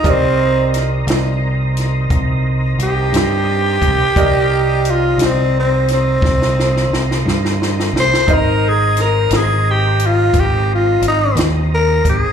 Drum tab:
HH |x---x-x---x-x---x-x---x-|x---x-x---x-------------|x---x-x---x-x---x-x---x-|
SD |----o-o---o-------o-----|------o---o-oooooooooooo|----o-o-----------o-----|
BD |o-----------o---------o-|o-----------o-----------|o-----------o---------o-|